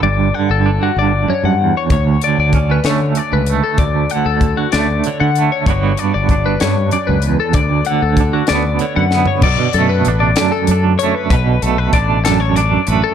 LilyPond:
<<
  \new Staff \with { instrumentName = "Clean electric guitar" } { \time 6/8 \key b \minor \tempo 4. = 64 d''8 fis''16 a'8 fis'16 d''8 cis''16 fis''8 cis''16 | cis''8 d''16 d''8 b'16 cis''8 d''16 b'8 a'16 | d''8 fis''16 a'8 fis'16 d''8 cis''16 fis''8 cis''16 | cis''8 d''16 d''8 b'16 cis''8 d''16 b'8 a'16 |
d''8 fis''16 a'8 fis'16 d''8 cis''16 fis''8 cis''16 | d''8 a'16 b'8 d''8 a'8 r16 cis''16 b'16 | b'8 a'16 b'16 d''8 a'16 cis''16 d''8 b'16 a'16 | }
  \new Staff \with { instrumentName = "Clean electric guitar" } { \clef bass \time 6/8 \key b \minor << { r4 d'2 | r4 cis'8 a4 a8 | r4. a4 a8 | <d b d' fis'>4 d'2 |
r4 d'8 b4 b8 | r8 a8 d'4 d'8 a8 | r8 a8 d'4 d'8 a8 | } \\ { <g, d>8 d4 g,8 fis,8 e,8 | d,8 d4. r4 | d,8 d4. d4 | g,4. g,8 fis,8 e,8 |
d,8 d4. d4 | b,4. fis,4. | b,4. fis,4. | } >> }
  \new Staff \with { instrumentName = "Fingered electric bass" } { \clef bass \time 6/8 \key b \minor g,,8 r16 g,,8 r16 g,,8 r16 g,8 r16 | d,8 r16 d,8. d8 r16 cis,8 r16 | d,8 r16 d,8 r16 d,8 r16 d8 r16 | g,,8 r16 g,,8. g,8 r16 cis,8 r16 |
d,8 r16 d,8 r16 d,8 r16 fis,8 r16 | b,,16 r16 fis,8 a,,8 r8 fis,8 r8 | b,,8 b,,8 a,,4. a,,16 r16 | }
  \new DrumStaff \with { instrumentName = "Drums" } \drummode { \time 6/8 r4. r4. | <hh bd>8 hh8 <hh bd>8 <hh sn>8 hh8 hh8 | <hh bd>8 hh8 <hh bd>8 <hh sn>8 hh8 hh8 | <hh bd>8 hh8 <hh bd>8 <hh sn>8 hh8 hh8 |
<hh bd>8 hh8 <hh bd>8 <hh sn>8 hh8 sn16 tomfh16 | <cymc bd>8 hh8 hh8 <hh sn>8 hh8 hh8 | <hh bd>8 hh8 <hh bd>8 <hh sn>8 hh8 hh8 | }
>>